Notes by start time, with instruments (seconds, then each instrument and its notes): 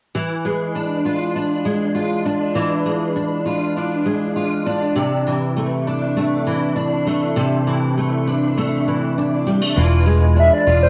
0.15 steel-string acoustic guitar E3
0.45 steel-string acoustic guitar G#3
0.75 steel-string acoustic guitar D4
1.05 steel-string acoustic guitar F4
1.35 steel-string acoustic guitar D4
1.65 steel-string acoustic guitar G#3
1.95 steel-string acoustic guitar F4
2.25 steel-string acoustic guitar D4
2.55 steel-string acoustic guitar E3
2.86 steel-string acoustic guitar G#3
3.16 steel-string acoustic guitar D4
3.46 steel-string acoustic guitar F4
3.77 steel-string acoustic guitar D4
4.05 steel-string acoustic guitar G#3
4.36 steel-string acoustic guitar F4
4.66 steel-string acoustic guitar D4
4.95 steel-string acoustic guitar C3
5.27 steel-string acoustic guitar E3
5.57 steel-string acoustic guitar A3
5.87 steel-string acoustic guitar D4
6.17 steel-string acoustic guitar A3
6.47 steel-string acoustic guitar E3
6.76 steel-string acoustic guitar D4
7.07 steel-string acoustic guitar A3
7.36 steel-string acoustic guitar C3
7.67 steel-string acoustic guitar E3
7.98 steel-string acoustic guitar A3
8.27 steel-string acoustic guitar D4
8.58 steel-string acoustic guitar A3
8.88 steel-string acoustic guitar E3
9.18 steel-string acoustic guitar D4
9.47 steel-string acoustic guitar G3
9.61 steel-string acoustic guitar A3
9.76 fretless electric bass E1, steel-string acoustic guitar E3 F4
10.06 steel-string acoustic guitar G#3
10.36 steel-string acoustic guitar D4, soft synth lead E5
10.53 soft synth lead D5
10.67 fretless electric bass E1, steel-string acoustic guitar F4
10.83 soft synth lead C5